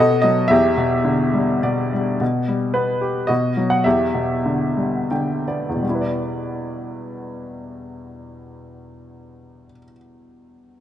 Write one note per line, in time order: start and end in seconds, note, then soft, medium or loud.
0.00 0.49 B2 medium
0.00 0.48 A4 medium
0.00 0.20 D#5 medium
0.22 0.50 F#3 soft
0.22 0.50 D#5 medium
0.48 2.17 E2 medium
0.48 1.60 G4 medium
0.48 1.58 E5 medium
0.77 1.62 B2 soft
1.05 2.17 D3 soft
1.33 1.92 G3 soft
1.63 2.19 B2 soft
1.63 2.17 D5 medium
1.93 2.20 G3 soft
2.21 3.26 B2 soft
2.48 3.27 G3 soft
2.74 3.27 B3 soft
2.74 3.30 B4 medium
3.01 3.28 G4 soft
3.27 3.84 B2 soft
3.27 3.81 F#4 medium
3.27 3.71 D#5 medium
3.57 3.84 F#3 soft
3.70 3.85 F#5 medium
3.84 5.68 E2 medium
3.84 5.06 G4 soft
3.84 5.06 E5 medium
4.14 5.43 B2 soft
4.46 5.10 D3 soft
4.77 5.80 G3 soft
5.11 5.83 D3 soft
5.11 5.44 G5 soft
5.48 5.84 B3 soft
5.48 5.83 D5 soft
5.69 9.64 E2 soft
5.76 9.71 B2 soft
5.82 9.77 G3 soft
5.89 9.84 E4 soft
5.95 9.90 B4 soft
6.01 9.96 D5 soft